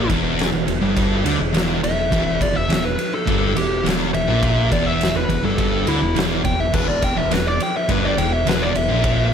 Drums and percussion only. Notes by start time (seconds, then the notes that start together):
0.10 kick, ride
0.39 snare, ride
0.68 ride
0.97 kick, ride
1.26 ride
1.54 snare, ride
1.84 ride
2.12 kick, ride
2.41 kick, ride
2.70 snare, ride
2.99 ride
3.27 kick, ride
3.56 ride
3.86 snare, ride
4.14 ride
4.43 kick, ride
4.72 kick, ride
5.01 snare, ride
5.30 kick, ride
5.58 kick, ride
5.87 ride
6.16 snare, ride
6.45 kick, ride
6.74 kick, crash
7.02 kick, ride
7.31 snare, ride
7.60 ride
7.89 kick, ride
8.18 ride
8.47 snare, ride
8.75 ride
9.04 kick, ride